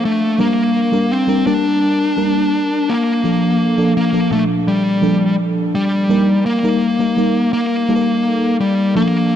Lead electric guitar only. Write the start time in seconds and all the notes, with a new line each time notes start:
0.05 A3
0.40 A#3
1.11 C4
1.47 D4
2.89 A#3
3.97 A#3
4.33 A3
4.68 G3
5.75 G3
6.46 A#3
7.53 A#3
8.60 G3
8.96 A#3